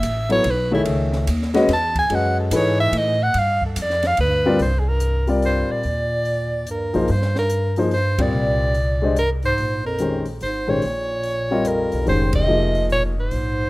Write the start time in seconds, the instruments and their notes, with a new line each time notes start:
Already playing: soprano saxophone E5
0.03 upright bass A1, hi-hat pedal, ride
0.29 grand piano F#3 B3 E4 A4 C#5, soprano saxophone C#5, ride
0.44 upright bass B1, ride
0.50 soprano saxophone B4
0.71 grand piano D#3 A3 G#4 C#5 E5, soprano saxophone E4
0.85 upright bass C#2, ride
1.13 snare
1.27 upright bass D#2, hi-hat pedal, ride
1.42 snare
1.54 grand piano G#3 C#4 F#4 B4 D#5, snare, ride
1.68 upright bass E2, snare, ride
1.73 soprano saxophone A5
1.96 soprano saxophone G#5, kick, ride
2.10 upright bass F#2, grand piano G#3 C#4 F#4 B4 D#5, ride
2.15 soprano saxophone F#5
2.40 soprano saxophone A4
2.51 upright bass G#2, grand piano E3 D#4 G#4 A4 B4, hi-hat pedal, ride
2.56 soprano saxophone C#5
2.80 soprano saxophone E5
2.92 upright bass A2, ride
2.98 soprano saxophone D#5
3.23 soprano saxophone F#5
3.34 upright bass G2, ride
3.39 soprano saxophone F5
3.62 kick
3.66 soprano saxophone A4
3.76 upright bass F2, hi-hat pedal, ride
3.82 soprano saxophone D5
3.90 snare
4.03 snare, ride
4.07 soprano saxophone F5
4.17 upright bass D2, bass clarinet G2, soprano saxophone B4, ride
4.46 grand piano G3 C4 F4 A#4 D5
4.59 upright bass C2, bass clarinet G2, soprano saxophone C5, open hi-hat
4.78 bass clarinet F2, soprano saxophone G#4
4.88 bass clarinet G2, soprano saxophone A#4
5.00 closed hi-hat
5.27 grand piano G3 C4 F4 A#4 D5, open hi-hat
5.42 bass clarinet G2, soprano saxophone C5, open hi-hat
5.70 bass clarinet A#2, soprano saxophone D5
5.83 upright bass D#2, open hi-hat
6.25 open hi-hat
6.67 bass clarinet G2, closed hi-hat
6.71 soprano saxophone A#4
6.94 upright bass B1, grand piano F3 A#3 D#4 G#4 C5, open hi-hat
7.08 upright bass G2, bass clarinet G2, soprano saxophone C5, open hi-hat
7.22 snare
7.36 bass clarinet G2, soprano saxophone A#4, snare
7.50 closed hi-hat
7.76 grand piano F3 A#3 D#4 G#4 C5, open hi-hat
7.91 bass clarinet G2, soprano saxophone C5, open hi-hat
8.18 bass clarinet A#2, grand piano G3 C4 F4 A#4 D5, soprano saxophone D5, kick, ride
8.33 upright bass C2
8.74 open hi-hat
9.02 grand piano G#3 D4 G4 C5 D#5
9.16 bass clarinet G2, soprano saxophone A#4, closed hi-hat
9.42 bass clarinet G#2, soprano saxophone C5, open hi-hat
9.58 upright bass A#1, open hi-hat
9.85 bass clarinet F2, soprano saxophone A#4
9.98 grand piano D#3 G#3 C#4 G4 C5, closed hi-hat
10.25 open hi-hat
10.41 upright bass G#1, bass clarinet G#2, soprano saxophone C5, open hi-hat
10.68 bass clarinet A#2, grand piano D#3 G#3 C#4 G4 C5, soprano saxophone C#5
10.82 upright bass A#1, open hi-hat
11.23 open hi-hat
11.51 grand piano G3 C4 F4 A#4 D#5
11.65 bass clarinet F2, soprano saxophone A#4, closed hi-hat
11.92 upright bass B1, open hi-hat
12.06 upright bass F1, bass clarinet G#2, grand piano D#3 G#3 C#4 G4 C5, soprano saxophone C5, open hi-hat
12.33 bass clarinet C3, soprano saxophone D#5, kick, ride
12.48 grand piano F3 A#3 D#4 G#4 D#5
12.75 open hi-hat
12.90 bass clarinet A#2, soprano saxophone C#5, open hi-hat
13.17 bass clarinet G#2, soprano saxophone C5
13.31 upright bass A#1, open hi-hat